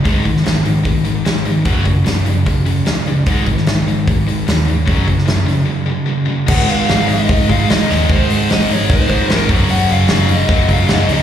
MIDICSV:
0, 0, Header, 1, 6, 480
1, 0, Start_track
1, 0, Tempo, 401338
1, 59, Time_signature, 4, 2, 24, 8
1, 13426, End_track
2, 0, Start_track
2, 0, Title_t, "Lead electric guitar"
2, 0, Program_c, 0, 29
2, 7761, Note_on_c, 0, 78, 96
2, 8002, Note_off_c, 0, 78, 0
2, 8007, Note_on_c, 0, 77, 88
2, 8451, Note_off_c, 0, 77, 0
2, 8470, Note_on_c, 0, 75, 86
2, 8968, Note_off_c, 0, 75, 0
2, 8973, Note_on_c, 0, 77, 90
2, 9190, Note_off_c, 0, 77, 0
2, 9207, Note_on_c, 0, 75, 87
2, 9445, Note_off_c, 0, 75, 0
2, 9459, Note_on_c, 0, 75, 75
2, 9695, Note_off_c, 0, 75, 0
2, 9707, Note_on_c, 0, 72, 86
2, 10139, Note_off_c, 0, 72, 0
2, 10196, Note_on_c, 0, 75, 90
2, 10422, Note_off_c, 0, 75, 0
2, 10442, Note_on_c, 0, 73, 86
2, 10664, Note_off_c, 0, 73, 0
2, 10682, Note_on_c, 0, 72, 91
2, 11184, Note_off_c, 0, 72, 0
2, 11184, Note_on_c, 0, 70, 91
2, 11327, Note_off_c, 0, 70, 0
2, 11610, Note_on_c, 0, 78, 102
2, 11823, Note_off_c, 0, 78, 0
2, 11856, Note_on_c, 0, 77, 105
2, 12287, Note_off_c, 0, 77, 0
2, 12363, Note_on_c, 0, 75, 96
2, 12823, Note_off_c, 0, 75, 0
2, 12828, Note_on_c, 0, 77, 99
2, 13051, Note_off_c, 0, 77, 0
2, 13075, Note_on_c, 0, 75, 92
2, 13293, Note_off_c, 0, 75, 0
2, 13313, Note_on_c, 0, 75, 78
2, 13426, Note_off_c, 0, 75, 0
2, 13426, End_track
3, 0, Start_track
3, 0, Title_t, "Distorted electric guitar"
3, 0, Program_c, 1, 30
3, 50, Note_on_c, 1, 44, 82
3, 52, Note_on_c, 1, 51, 84
3, 57, Note_on_c, 1, 56, 80
3, 269, Note_off_c, 1, 44, 0
3, 278, Note_off_c, 1, 51, 0
3, 284, Note_off_c, 1, 56, 0
3, 284, Note_on_c, 1, 44, 67
3, 292, Note_on_c, 1, 51, 67
3, 508, Note_off_c, 1, 44, 0
3, 512, Note_off_c, 1, 51, 0
3, 525, Note_on_c, 1, 44, 73
3, 528, Note_on_c, 1, 51, 76
3, 743, Note_off_c, 1, 44, 0
3, 745, Note_off_c, 1, 51, 0
3, 758, Note_on_c, 1, 44, 68
3, 759, Note_on_c, 1, 51, 77
3, 986, Note_off_c, 1, 44, 0
3, 986, Note_off_c, 1, 51, 0
3, 999, Note_on_c, 1, 44, 74
3, 1005, Note_on_c, 1, 51, 77
3, 1227, Note_off_c, 1, 44, 0
3, 1230, Note_off_c, 1, 51, 0
3, 1249, Note_on_c, 1, 44, 64
3, 1252, Note_on_c, 1, 51, 66
3, 1472, Note_off_c, 1, 44, 0
3, 1474, Note_off_c, 1, 51, 0
3, 1496, Note_on_c, 1, 44, 73
3, 1505, Note_on_c, 1, 51, 76
3, 1716, Note_off_c, 1, 44, 0
3, 1721, Note_off_c, 1, 51, 0
3, 1742, Note_on_c, 1, 44, 59
3, 1749, Note_on_c, 1, 51, 73
3, 1960, Note_off_c, 1, 44, 0
3, 1963, Note_off_c, 1, 51, 0
3, 1975, Note_on_c, 1, 42, 93
3, 1980, Note_on_c, 1, 49, 83
3, 1985, Note_on_c, 1, 54, 86
3, 2202, Note_off_c, 1, 49, 0
3, 2206, Note_off_c, 1, 42, 0
3, 2211, Note_off_c, 1, 54, 0
3, 2217, Note_on_c, 1, 49, 72
3, 2218, Note_on_c, 1, 42, 65
3, 2429, Note_off_c, 1, 42, 0
3, 2434, Note_off_c, 1, 49, 0
3, 2443, Note_on_c, 1, 42, 81
3, 2448, Note_on_c, 1, 49, 73
3, 2672, Note_off_c, 1, 42, 0
3, 2674, Note_off_c, 1, 49, 0
3, 2697, Note_on_c, 1, 42, 67
3, 2700, Note_on_c, 1, 49, 84
3, 2919, Note_off_c, 1, 42, 0
3, 2920, Note_off_c, 1, 49, 0
3, 2941, Note_on_c, 1, 49, 82
3, 2943, Note_on_c, 1, 42, 75
3, 3162, Note_off_c, 1, 42, 0
3, 3162, Note_off_c, 1, 49, 0
3, 3176, Note_on_c, 1, 42, 61
3, 3180, Note_on_c, 1, 49, 66
3, 3400, Note_off_c, 1, 42, 0
3, 3401, Note_off_c, 1, 49, 0
3, 3425, Note_on_c, 1, 42, 69
3, 3427, Note_on_c, 1, 49, 75
3, 3644, Note_off_c, 1, 42, 0
3, 3646, Note_off_c, 1, 49, 0
3, 3676, Note_on_c, 1, 42, 61
3, 3678, Note_on_c, 1, 49, 70
3, 3891, Note_off_c, 1, 42, 0
3, 3892, Note_off_c, 1, 49, 0
3, 3911, Note_on_c, 1, 44, 87
3, 3923, Note_on_c, 1, 51, 89
3, 3926, Note_on_c, 1, 56, 89
3, 4138, Note_off_c, 1, 44, 0
3, 4144, Note_off_c, 1, 51, 0
3, 4146, Note_off_c, 1, 56, 0
3, 4157, Note_on_c, 1, 44, 59
3, 4161, Note_on_c, 1, 51, 68
3, 4372, Note_off_c, 1, 44, 0
3, 4374, Note_off_c, 1, 51, 0
3, 4391, Note_on_c, 1, 44, 80
3, 4399, Note_on_c, 1, 51, 82
3, 4609, Note_off_c, 1, 44, 0
3, 4613, Note_off_c, 1, 51, 0
3, 4626, Note_on_c, 1, 51, 77
3, 4630, Note_on_c, 1, 44, 67
3, 4848, Note_off_c, 1, 51, 0
3, 4849, Note_off_c, 1, 44, 0
3, 4871, Note_on_c, 1, 44, 77
3, 4874, Note_on_c, 1, 51, 82
3, 5090, Note_off_c, 1, 44, 0
3, 5092, Note_off_c, 1, 51, 0
3, 5114, Note_on_c, 1, 44, 63
3, 5114, Note_on_c, 1, 51, 67
3, 5328, Note_off_c, 1, 44, 0
3, 5333, Note_off_c, 1, 51, 0
3, 5342, Note_on_c, 1, 44, 67
3, 5349, Note_on_c, 1, 51, 74
3, 5564, Note_off_c, 1, 51, 0
3, 5567, Note_off_c, 1, 44, 0
3, 5579, Note_on_c, 1, 44, 70
3, 5579, Note_on_c, 1, 51, 78
3, 5803, Note_off_c, 1, 44, 0
3, 5806, Note_off_c, 1, 51, 0
3, 5808, Note_on_c, 1, 42, 91
3, 5816, Note_on_c, 1, 49, 82
3, 5819, Note_on_c, 1, 54, 95
3, 6032, Note_off_c, 1, 42, 0
3, 6038, Note_off_c, 1, 49, 0
3, 6046, Note_on_c, 1, 42, 67
3, 6052, Note_on_c, 1, 49, 66
3, 6056, Note_off_c, 1, 54, 0
3, 6271, Note_off_c, 1, 42, 0
3, 6273, Note_off_c, 1, 49, 0
3, 6285, Note_on_c, 1, 42, 80
3, 6288, Note_on_c, 1, 49, 83
3, 6517, Note_off_c, 1, 42, 0
3, 6521, Note_off_c, 1, 49, 0
3, 6531, Note_on_c, 1, 42, 64
3, 6535, Note_on_c, 1, 49, 78
3, 6748, Note_off_c, 1, 42, 0
3, 6755, Note_off_c, 1, 49, 0
3, 6762, Note_on_c, 1, 42, 77
3, 6769, Note_on_c, 1, 49, 79
3, 6991, Note_off_c, 1, 42, 0
3, 6998, Note_off_c, 1, 49, 0
3, 7006, Note_on_c, 1, 42, 63
3, 7012, Note_on_c, 1, 49, 67
3, 7229, Note_off_c, 1, 42, 0
3, 7231, Note_off_c, 1, 49, 0
3, 7243, Note_on_c, 1, 42, 73
3, 7246, Note_on_c, 1, 49, 75
3, 7467, Note_off_c, 1, 42, 0
3, 7480, Note_off_c, 1, 49, 0
3, 7481, Note_on_c, 1, 42, 65
3, 7494, Note_on_c, 1, 49, 72
3, 7718, Note_off_c, 1, 42, 0
3, 7724, Note_off_c, 1, 49, 0
3, 7731, Note_on_c, 1, 44, 100
3, 7756, Note_on_c, 1, 51, 99
3, 7772, Note_on_c, 1, 56, 100
3, 8929, Note_off_c, 1, 56, 0
3, 8931, Note_off_c, 1, 44, 0
3, 8943, Note_off_c, 1, 51, 0
3, 8943, Note_on_c, 1, 56, 85
3, 8966, Note_on_c, 1, 51, 66
3, 8981, Note_on_c, 1, 44, 66
3, 9167, Note_off_c, 1, 44, 0
3, 9177, Note_off_c, 1, 56, 0
3, 9181, Note_on_c, 1, 44, 89
3, 9186, Note_off_c, 1, 51, 0
3, 9200, Note_on_c, 1, 51, 82
3, 9218, Note_on_c, 1, 56, 93
3, 9655, Note_off_c, 1, 44, 0
3, 9665, Note_off_c, 1, 51, 0
3, 9667, Note_on_c, 1, 44, 106
3, 9674, Note_off_c, 1, 56, 0
3, 9684, Note_on_c, 1, 51, 106
3, 9699, Note_on_c, 1, 56, 102
3, 10845, Note_off_c, 1, 56, 0
3, 10854, Note_off_c, 1, 44, 0
3, 10860, Note_on_c, 1, 56, 84
3, 10862, Note_off_c, 1, 51, 0
3, 10878, Note_on_c, 1, 51, 80
3, 10894, Note_on_c, 1, 44, 71
3, 11091, Note_off_c, 1, 56, 0
3, 11093, Note_off_c, 1, 44, 0
3, 11100, Note_off_c, 1, 51, 0
3, 11107, Note_on_c, 1, 44, 78
3, 11124, Note_on_c, 1, 51, 93
3, 11140, Note_on_c, 1, 56, 86
3, 11329, Note_off_c, 1, 44, 0
3, 11334, Note_on_c, 1, 42, 95
3, 11343, Note_off_c, 1, 51, 0
3, 11351, Note_off_c, 1, 56, 0
3, 11358, Note_on_c, 1, 49, 102
3, 11372, Note_on_c, 1, 54, 117
3, 12527, Note_off_c, 1, 42, 0
3, 12531, Note_on_c, 1, 42, 80
3, 12534, Note_off_c, 1, 49, 0
3, 12552, Note_on_c, 1, 49, 89
3, 12564, Note_off_c, 1, 54, 0
3, 12569, Note_on_c, 1, 54, 89
3, 12752, Note_off_c, 1, 54, 0
3, 12763, Note_off_c, 1, 42, 0
3, 12767, Note_on_c, 1, 54, 88
3, 12773, Note_off_c, 1, 49, 0
3, 12793, Note_on_c, 1, 49, 78
3, 12801, Note_on_c, 1, 42, 70
3, 13228, Note_off_c, 1, 42, 0
3, 13238, Note_off_c, 1, 54, 0
3, 13242, Note_on_c, 1, 42, 97
3, 13251, Note_off_c, 1, 49, 0
3, 13266, Note_on_c, 1, 49, 95
3, 13277, Note_on_c, 1, 54, 98
3, 13426, Note_off_c, 1, 42, 0
3, 13426, Note_off_c, 1, 49, 0
3, 13426, Note_off_c, 1, 54, 0
3, 13426, End_track
4, 0, Start_track
4, 0, Title_t, "Distorted electric guitar"
4, 0, Program_c, 2, 30
4, 6816, Note_on_c, 2, 42, 63
4, 6818, Note_on_c, 2, 49, 77
4, 7026, Note_off_c, 2, 42, 0
4, 7026, Note_off_c, 2, 49, 0
4, 9442, Note_on_c, 2, 56, 89
4, 9465, Note_on_c, 2, 51, 85
4, 9483, Note_on_c, 2, 44, 66
4, 9664, Note_off_c, 2, 44, 0
4, 9666, Note_off_c, 2, 56, 0
4, 9677, Note_off_c, 2, 51, 0
4, 13012, Note_on_c, 2, 42, 85
4, 13038, Note_on_c, 2, 49, 97
4, 13056, Note_on_c, 2, 54, 88
4, 13241, Note_off_c, 2, 42, 0
4, 13255, Note_off_c, 2, 49, 0
4, 13264, Note_off_c, 2, 54, 0
4, 13426, End_track
5, 0, Start_track
5, 0, Title_t, "Picked electric bass"
5, 0, Program_c, 3, 34
5, 63, Note_on_c, 3, 32, 84
5, 259, Note_off_c, 3, 32, 0
5, 303, Note_on_c, 3, 32, 78
5, 500, Note_off_c, 3, 32, 0
5, 540, Note_on_c, 3, 32, 85
5, 738, Note_off_c, 3, 32, 0
5, 795, Note_on_c, 3, 32, 86
5, 987, Note_off_c, 3, 32, 0
5, 1020, Note_on_c, 3, 32, 86
5, 1417, Note_off_c, 3, 32, 0
5, 1513, Note_on_c, 3, 32, 78
5, 1905, Note_off_c, 3, 32, 0
5, 1980, Note_on_c, 3, 30, 81
5, 2180, Note_off_c, 3, 30, 0
5, 2222, Note_on_c, 3, 30, 81
5, 2422, Note_off_c, 3, 30, 0
5, 2460, Note_on_c, 3, 30, 81
5, 2661, Note_off_c, 3, 30, 0
5, 2701, Note_on_c, 3, 30, 83
5, 2902, Note_off_c, 3, 30, 0
5, 2950, Note_on_c, 3, 30, 89
5, 3346, Note_off_c, 3, 30, 0
5, 3426, Note_on_c, 3, 37, 86
5, 3824, Note_off_c, 3, 37, 0
5, 3909, Note_on_c, 3, 32, 91
5, 4109, Note_off_c, 3, 32, 0
5, 4142, Note_on_c, 3, 32, 82
5, 4345, Note_off_c, 3, 32, 0
5, 4384, Note_on_c, 3, 32, 88
5, 4586, Note_off_c, 3, 32, 0
5, 4631, Note_on_c, 3, 32, 90
5, 4831, Note_off_c, 3, 32, 0
5, 4878, Note_on_c, 3, 32, 88
5, 5274, Note_off_c, 3, 32, 0
5, 5349, Note_on_c, 3, 39, 85
5, 5749, Note_off_c, 3, 39, 0
5, 5832, Note_on_c, 3, 30, 87
5, 6033, Note_off_c, 3, 30, 0
5, 6075, Note_on_c, 3, 30, 83
5, 6276, Note_off_c, 3, 30, 0
5, 6303, Note_on_c, 3, 30, 78
5, 6509, Note_off_c, 3, 30, 0
5, 6550, Note_on_c, 3, 30, 79
5, 6753, Note_off_c, 3, 30, 0
5, 7759, Note_on_c, 3, 32, 95
5, 7936, Note_off_c, 3, 32, 0
5, 7998, Note_on_c, 3, 32, 87
5, 8175, Note_off_c, 3, 32, 0
5, 8241, Note_on_c, 3, 32, 89
5, 8417, Note_off_c, 3, 32, 0
5, 8488, Note_on_c, 3, 32, 95
5, 8661, Note_off_c, 3, 32, 0
5, 8724, Note_on_c, 3, 32, 95
5, 8898, Note_off_c, 3, 32, 0
5, 8957, Note_on_c, 3, 44, 89
5, 9134, Note_off_c, 3, 44, 0
5, 9209, Note_on_c, 3, 32, 93
5, 9381, Note_off_c, 3, 32, 0
5, 9439, Note_on_c, 3, 39, 86
5, 9614, Note_off_c, 3, 39, 0
5, 9678, Note_on_c, 3, 32, 88
5, 9853, Note_off_c, 3, 32, 0
5, 9924, Note_on_c, 3, 32, 82
5, 10097, Note_off_c, 3, 32, 0
5, 10176, Note_on_c, 3, 32, 88
5, 10343, Note_off_c, 3, 32, 0
5, 10399, Note_on_c, 3, 32, 101
5, 10573, Note_off_c, 3, 32, 0
5, 10643, Note_on_c, 3, 32, 104
5, 10815, Note_off_c, 3, 32, 0
5, 10879, Note_on_c, 3, 44, 88
5, 11052, Note_off_c, 3, 44, 0
5, 11111, Note_on_c, 3, 32, 94
5, 11286, Note_off_c, 3, 32, 0
5, 11353, Note_on_c, 3, 30, 87
5, 11527, Note_off_c, 3, 30, 0
5, 11594, Note_on_c, 3, 30, 93
5, 11767, Note_off_c, 3, 30, 0
5, 11833, Note_on_c, 3, 30, 90
5, 12006, Note_off_c, 3, 30, 0
5, 12071, Note_on_c, 3, 30, 94
5, 12244, Note_off_c, 3, 30, 0
5, 12304, Note_on_c, 3, 30, 94
5, 12479, Note_off_c, 3, 30, 0
5, 12541, Note_on_c, 3, 30, 99
5, 12717, Note_off_c, 3, 30, 0
5, 12784, Note_on_c, 3, 42, 85
5, 12958, Note_off_c, 3, 42, 0
5, 13022, Note_on_c, 3, 30, 91
5, 13196, Note_off_c, 3, 30, 0
5, 13252, Note_on_c, 3, 37, 87
5, 13426, Note_off_c, 3, 37, 0
5, 13426, End_track
6, 0, Start_track
6, 0, Title_t, "Drums"
6, 65, Note_on_c, 9, 36, 110
6, 70, Note_on_c, 9, 46, 64
6, 185, Note_off_c, 9, 36, 0
6, 190, Note_off_c, 9, 46, 0
6, 303, Note_on_c, 9, 36, 71
6, 303, Note_on_c, 9, 46, 49
6, 423, Note_off_c, 9, 36, 0
6, 423, Note_off_c, 9, 46, 0
6, 442, Note_on_c, 9, 38, 34
6, 545, Note_on_c, 9, 46, 65
6, 557, Note_off_c, 9, 38, 0
6, 557, Note_on_c, 9, 38, 91
6, 665, Note_off_c, 9, 46, 0
6, 677, Note_off_c, 9, 38, 0
6, 780, Note_on_c, 9, 46, 49
6, 900, Note_off_c, 9, 46, 0
6, 1019, Note_on_c, 9, 46, 71
6, 1020, Note_on_c, 9, 36, 103
6, 1138, Note_off_c, 9, 46, 0
6, 1140, Note_off_c, 9, 36, 0
6, 1253, Note_on_c, 9, 46, 50
6, 1373, Note_off_c, 9, 46, 0
6, 1500, Note_on_c, 9, 46, 65
6, 1512, Note_on_c, 9, 38, 100
6, 1619, Note_off_c, 9, 46, 0
6, 1631, Note_off_c, 9, 38, 0
6, 1736, Note_on_c, 9, 46, 52
6, 1855, Note_off_c, 9, 46, 0
6, 1972, Note_on_c, 9, 46, 69
6, 1980, Note_on_c, 9, 36, 102
6, 2092, Note_off_c, 9, 46, 0
6, 2099, Note_off_c, 9, 36, 0
6, 2214, Note_on_c, 9, 46, 56
6, 2220, Note_on_c, 9, 36, 79
6, 2334, Note_off_c, 9, 46, 0
6, 2340, Note_off_c, 9, 36, 0
6, 2460, Note_on_c, 9, 46, 70
6, 2472, Note_on_c, 9, 38, 94
6, 2580, Note_off_c, 9, 46, 0
6, 2592, Note_off_c, 9, 38, 0
6, 2702, Note_on_c, 9, 46, 56
6, 2821, Note_off_c, 9, 46, 0
6, 2947, Note_on_c, 9, 46, 72
6, 2948, Note_on_c, 9, 36, 97
6, 3066, Note_off_c, 9, 46, 0
6, 3067, Note_off_c, 9, 36, 0
6, 3183, Note_on_c, 9, 46, 56
6, 3303, Note_off_c, 9, 46, 0
6, 3418, Note_on_c, 9, 46, 62
6, 3430, Note_on_c, 9, 38, 98
6, 3537, Note_off_c, 9, 46, 0
6, 3549, Note_off_c, 9, 38, 0
6, 3656, Note_on_c, 9, 46, 48
6, 3775, Note_off_c, 9, 46, 0
6, 3899, Note_on_c, 9, 46, 69
6, 3907, Note_on_c, 9, 36, 99
6, 4019, Note_off_c, 9, 46, 0
6, 4027, Note_off_c, 9, 36, 0
6, 4138, Note_on_c, 9, 46, 48
6, 4146, Note_on_c, 9, 36, 77
6, 4258, Note_off_c, 9, 46, 0
6, 4266, Note_off_c, 9, 36, 0
6, 4275, Note_on_c, 9, 38, 33
6, 4382, Note_on_c, 9, 46, 63
6, 4394, Note_off_c, 9, 38, 0
6, 4394, Note_on_c, 9, 38, 100
6, 4501, Note_off_c, 9, 46, 0
6, 4513, Note_off_c, 9, 38, 0
6, 4637, Note_on_c, 9, 46, 49
6, 4756, Note_off_c, 9, 46, 0
6, 4873, Note_on_c, 9, 46, 71
6, 4874, Note_on_c, 9, 36, 108
6, 4992, Note_off_c, 9, 46, 0
6, 4994, Note_off_c, 9, 36, 0
6, 5122, Note_on_c, 9, 46, 49
6, 5241, Note_off_c, 9, 46, 0
6, 5354, Note_on_c, 9, 46, 69
6, 5366, Note_on_c, 9, 38, 101
6, 5474, Note_off_c, 9, 46, 0
6, 5486, Note_off_c, 9, 38, 0
6, 5596, Note_on_c, 9, 46, 50
6, 5716, Note_off_c, 9, 46, 0
6, 5831, Note_on_c, 9, 36, 104
6, 5835, Note_on_c, 9, 46, 70
6, 5951, Note_off_c, 9, 36, 0
6, 5955, Note_off_c, 9, 46, 0
6, 6070, Note_on_c, 9, 36, 74
6, 6073, Note_on_c, 9, 46, 52
6, 6190, Note_off_c, 9, 36, 0
6, 6192, Note_off_c, 9, 46, 0
6, 6203, Note_on_c, 9, 38, 32
6, 6309, Note_on_c, 9, 46, 76
6, 6321, Note_off_c, 9, 38, 0
6, 6321, Note_on_c, 9, 38, 104
6, 6429, Note_off_c, 9, 46, 0
6, 6441, Note_off_c, 9, 38, 0
6, 6555, Note_on_c, 9, 46, 53
6, 6675, Note_off_c, 9, 46, 0
6, 7751, Note_on_c, 9, 49, 127
6, 7756, Note_on_c, 9, 36, 114
6, 7870, Note_off_c, 9, 49, 0
6, 7875, Note_off_c, 9, 36, 0
6, 7991, Note_on_c, 9, 46, 64
6, 8110, Note_off_c, 9, 46, 0
6, 8235, Note_on_c, 9, 46, 77
6, 8247, Note_on_c, 9, 38, 115
6, 8355, Note_off_c, 9, 46, 0
6, 8367, Note_off_c, 9, 38, 0
6, 8475, Note_on_c, 9, 46, 63
6, 8595, Note_off_c, 9, 46, 0
6, 8715, Note_on_c, 9, 46, 83
6, 8722, Note_on_c, 9, 36, 116
6, 8834, Note_off_c, 9, 46, 0
6, 8842, Note_off_c, 9, 36, 0
6, 8963, Note_on_c, 9, 36, 80
6, 8964, Note_on_c, 9, 46, 59
6, 9083, Note_off_c, 9, 36, 0
6, 9083, Note_off_c, 9, 46, 0
6, 9203, Note_on_c, 9, 46, 87
6, 9215, Note_on_c, 9, 38, 110
6, 9322, Note_off_c, 9, 46, 0
6, 9334, Note_off_c, 9, 38, 0
6, 9451, Note_on_c, 9, 46, 63
6, 9463, Note_on_c, 9, 38, 35
6, 9571, Note_off_c, 9, 46, 0
6, 9583, Note_off_c, 9, 38, 0
6, 9680, Note_on_c, 9, 46, 86
6, 9682, Note_on_c, 9, 36, 122
6, 9799, Note_off_c, 9, 46, 0
6, 9802, Note_off_c, 9, 36, 0
6, 9925, Note_on_c, 9, 46, 70
6, 10045, Note_off_c, 9, 46, 0
6, 10165, Note_on_c, 9, 46, 95
6, 10177, Note_on_c, 9, 38, 111
6, 10284, Note_off_c, 9, 46, 0
6, 10296, Note_off_c, 9, 38, 0
6, 10405, Note_on_c, 9, 46, 64
6, 10525, Note_off_c, 9, 46, 0
6, 10641, Note_on_c, 9, 46, 88
6, 10642, Note_on_c, 9, 36, 118
6, 10761, Note_off_c, 9, 36, 0
6, 10761, Note_off_c, 9, 46, 0
6, 10877, Note_on_c, 9, 46, 62
6, 10879, Note_on_c, 9, 36, 81
6, 10996, Note_off_c, 9, 46, 0
6, 10998, Note_off_c, 9, 36, 0
6, 11116, Note_on_c, 9, 46, 83
6, 11128, Note_on_c, 9, 38, 112
6, 11235, Note_off_c, 9, 46, 0
6, 11247, Note_off_c, 9, 38, 0
6, 11350, Note_on_c, 9, 46, 60
6, 11353, Note_on_c, 9, 36, 116
6, 11470, Note_off_c, 9, 46, 0
6, 11472, Note_off_c, 9, 36, 0
6, 11585, Note_on_c, 9, 46, 87
6, 11704, Note_off_c, 9, 46, 0
6, 11828, Note_on_c, 9, 46, 60
6, 11948, Note_off_c, 9, 46, 0
6, 12053, Note_on_c, 9, 46, 79
6, 12065, Note_on_c, 9, 38, 106
6, 12173, Note_off_c, 9, 46, 0
6, 12185, Note_off_c, 9, 38, 0
6, 12300, Note_on_c, 9, 46, 63
6, 12419, Note_off_c, 9, 46, 0
6, 12541, Note_on_c, 9, 46, 84
6, 12545, Note_on_c, 9, 36, 118
6, 12660, Note_off_c, 9, 46, 0
6, 12664, Note_off_c, 9, 36, 0
6, 12777, Note_on_c, 9, 46, 65
6, 12784, Note_on_c, 9, 36, 81
6, 12896, Note_off_c, 9, 46, 0
6, 12903, Note_off_c, 9, 36, 0
6, 13014, Note_on_c, 9, 46, 80
6, 13026, Note_on_c, 9, 38, 105
6, 13133, Note_off_c, 9, 46, 0
6, 13145, Note_off_c, 9, 38, 0
6, 13260, Note_on_c, 9, 46, 65
6, 13379, Note_off_c, 9, 46, 0
6, 13426, End_track
0, 0, End_of_file